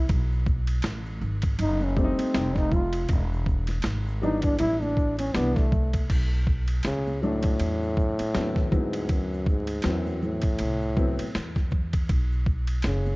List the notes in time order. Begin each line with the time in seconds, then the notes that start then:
0.09 B1, kick, ride, shaker
0.33 shaker
0.46 kick, high conga, shaker
0.67 ride, shaker
0.82 A1, snare, hi-hat pedal, ride, shaker
1.06 shaker
1.21 G#1, low conga, shaker
1.42 kick, ride, shaker
1.59 F#1 D#4, ride, low conga, shaker
1.81 C#4, high conga, shaker
1.96 G3 A3 C4 D4, kick, shaker
2.04 D#4
2.19 muted upright bass stroke, ride, high conga, shaker
2.34 F1 G3 A3 C4 D#4, snare, hi-hat pedal, ride, shaker
2.56 D#4, kick, snare, shaker
2.72 F4, kick, low conga, shaker
2.93 ride, shaker
3.09 E1, kick, ride, shaker
3.34 shaker
3.46 kick, high conga, shaker
3.67 snare, ride
3.72 shaker
3.82 G#1, snare, hi-hat pedal, ride, shaker
4.08 shaker
4.22 E3 G3 B3 D4 D#4, low conga, shaker
4.42 D4, kick, ride, shaker
4.59 A1 E4, ride, low conga, shaker
4.81 D4, high conga, shaker
4.97 kick, shaker
5.19 C#4, ride, high conga, shaker
5.34 C2 E3 G3 B3 D4, snare, hi-hat pedal, ride, shaker
5.56 A3, kick, snare, shaker
5.72 kick, low conga, shaker
5.93 kick, ride, shaker
6.10 B1, kick, crash, ride, shaker
6.34 shaker
6.47 kick, shaker
6.68 ride, shaker
6.83 C#2 C#3, snare, hi-hat pedal, ride, shaker
7.07 high conga, shaker
7.22 A2 F#3 A3 C#4 D4, low conga, shaker
7.43 kick, ride, shaker
7.60 E2, ride, high conga, shaker
7.83 shaker
7.97 kick, shaker
8.19 muted upright bass stroke, ride, high conga, shaker
8.34 D#2 F#3 B3 C4 D4, snare, hi-hat pedal, ride, shaker
8.42 E4
8.56 kick, snare, shaker
8.71 D2 G#2 F#3 B3 C4 E4, kick, low conga, shaker
8.93 ride, shaker
9.09 F#2, kick, ride, shaker
9.34 shaker
9.46 G#2, kick, shaker
9.67 ride, shaker
9.82 E2 F#2 F#3 B3 C4 E4, snare, hi-hat pedal, ride
9.86 shaker
10.07 high conga, shaker
10.22 A2, low conga, shaker
10.42 kick, ride, shaker
10.59 C2, ride, high conga, shaker
10.82 shaker
10.97 F#3 B3 C4 E4, kick, shaker
11.19 muted upright bass stroke, ride, high conga, shaker
11.35 E2, snare, hi-hat pedal, ride, shaker
11.55 kick, snare, shaker
11.71 kick, low conga, shaker
11.93 kick, ride, shaker
12.09 B1, kick, ride, shaker
12.32 shaker
12.46 kick, shaker
12.67 ride, shaker
12.82 F#1 C#3, snare, hi-hat pedal, ride, shaker
13.06 high conga, shaker